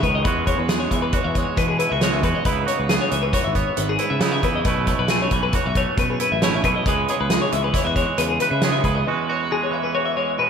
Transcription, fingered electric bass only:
0.03 C#2
0.25 E2
0.58 E2
0.92 E2
1.25 E2
1.58 E3
1.91 C#2
2.24 E2
2.46 C#2
2.79 C#2
3.12 C#2
3.46 G#1
3.78 G#1
4.11 C#3
4.43 E2
4.65 B1
4.99 B1
5.31 B1
5.65 B1
5.98 B2
6.32 A1
6.64 B1
6.86 C#2
7.20 C#2
7.53 C#2
7.85 E2
8.18 E2
8.51 C#3
8.84 C#2

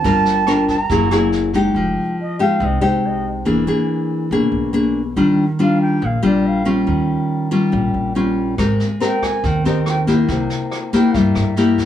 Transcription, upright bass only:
0.04 G1
0.90 F#1
1.74 F1
2.60 C2
2.82 C2
3.46 E1
4.31 B1
4.52 B1
5.16 D#2
6.02 A#1
6.24 A#1
6.87 D#2
7.73 A#1
7.94 A#1
8.59 G#1
9.44 D#2
9.65 D#2
10.29 C2
11.14 G2
11.36 G2

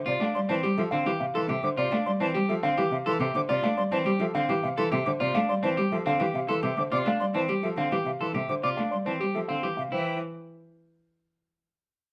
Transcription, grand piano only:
Already playing: C5
0.08 D5
0.22 F5
0.36 D5
0.50 C5
0.63 G4
0.77 A4
0.91 F5
1.06 G4
1.20 F5
1.35 A4
1.50 E5
1.64 C5
1.78 D5
1.93 F5
2.07 D5
2.20 C5
2.34 G4
2.49 A4
2.63 F5
2.78 G4
2.92 F5
3.07 A4
3.22 E5
3.35 C5
3.49 D5
3.64 F5
3.78 D5
3.93 C5
4.06 G4
4.21 A4
4.35 F5
4.50 G4
4.64 F5
4.78 A4
4.92 E5
5.07 C5
5.21 D5
5.35 F5
5.49 D5
5.64 C5
5.78 G4
5.92 A4
6.07 F5
6.22 G4
6.36 F5
6.50 A4
6.64 E5
6.79 C5
6.93 D5
7.08 F5
7.21 D5
7.36 C5
7.49 G4
7.64 A4
7.78 F5
7.92 G4
8.06 F5
8.21 A4
8.36 E5
8.49 C5
8.63 D5
8.77 F5
8.91 D5
9.05 C5
9.20 G4
9.35 A4
9.48 F5
9.62 G4
9.77 F5
9.92 C5

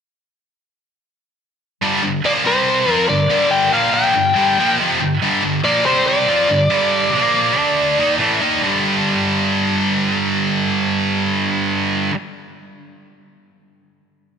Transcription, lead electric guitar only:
2.26 D5
2.47 C5
2.92 A#4
3.09 D5
3.51 G5
3.73 F5
3.94 G5
5.65 D5
5.86 C5
6.07 D5

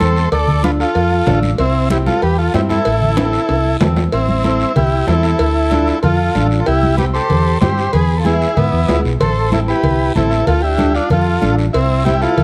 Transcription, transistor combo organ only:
Already playing: A4 C5
0.32 A4 D5
0.64 F4 B4
0.80 F4 A4
1.59 C4 E4
1.91 E4 G4
2.07 F4 A4
2.23 G4 B4
2.38 F4 A4
2.54 E4 G4
2.70 E4 A4
4.13 C4 E4
4.76 E4 G4
5.07 E4 A4
6.03 F4 A4
6.60 A4
6.66 E4 G4
6.97 G4 B4
7.14 A4 C5
7.61 G4 C5
7.93 G#4 B4
8.18 A4
8.25 E4 G#4
8.55 B3 E4
9.20 A4 C5
9.52 E4 A4
9.68 G4 B4
10.16 E4 A4
10.46 F4 A4
10.62 E4 G4
10.94 D4 F4
11.11 F4 A4
11.73 C4 E4
12.05 E4 G4
12.21 F4 A4

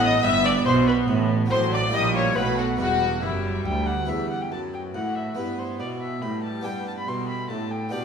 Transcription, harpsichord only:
Already playing: A2 F#4 A4
0.20 B3 E4 G4
0.25 G2
0.66 B2
1.08 A2
1.46 C4 F#4
1.50 A2
1.88 A#3 E4 G4
1.93 A#2
2.33 A3 D#4 F#4
2.38 B2
2.77 E2 B3 E4
3.23 F#2
3.66 D2
4.05 E2 B3 E4
4.52 F#2
4.95 A2
5.35 G2 B3 E4
5.80 B2
6.23 A2
6.61 B3 D4 G4
6.66 G2
7.08 B2
7.50 A2
7.89 B3 D4 G4
7.93 B2

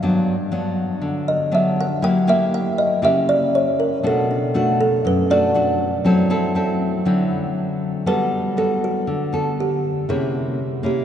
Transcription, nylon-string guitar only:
0.02 G2 F#3 B3 D4
0.52 F#3 B3 D4
1.02 D3
1.51 F#3 B3 D4
2.02 F#3 A#3 E4 G4
2.27 A#3 E4 G4
3.02 C#3 A#3 E4 G4
4.03 B2 A3 D4 F#4
4.54 A3 D4 F#4
5.05 F#2
5.30 A3 D4 F#4
5.54 A3 D4 F#4
6.05 F#3 C4 E4 A4
6.30 C4 E4 A4
6.55 C4 E4 A4
7.05 D3 F#3 C4 E4
8.06 G3 B3 F#4 A4
8.57 B3 F#4 A4
9.07 D3
9.33 B3 A4
10.09 C3 A#3 C#4 E4
10.83 A#3 C#4 E4

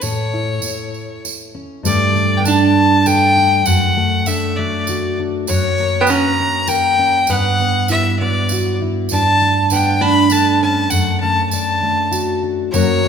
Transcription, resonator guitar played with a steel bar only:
1.86 G3
2.40 B3
2.48 D4
3.07 B3
3.67 A3
4.28 A3
4.59 F#3
5.49 F#3
6.01 B3
6.10 C#4
6.68 A#3
7.30 B3
7.91 G3
8.21 F#3
9.13 D4
9.72 B3
10.01 D4
10.31 D4
10.63 C#4
10.93 A3
11.22 C#4
11.54 D4
12.74 F#3

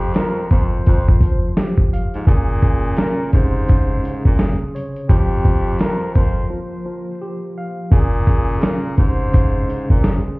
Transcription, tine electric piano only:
Already playing: F3
0.15 F3
0.51 A#3
0.86 F3
1.21 F3
1.57 G4
1.93 F5
2.26 C#3
2.64 C#3
2.97 C#3
3.34 C3
3.68 C#3
4.04 C#3
4.38 G#4
4.75 C#5
5.09 F3
5.45 F3
5.79 F3
6.16 A#3
6.50 F3
6.86 F3
7.22 G4
7.58 F5
7.91 C#3
8.28 C#3
8.62 C#3
8.99 C3
9.32 C#3
9.68 C#3
10.02 G#4

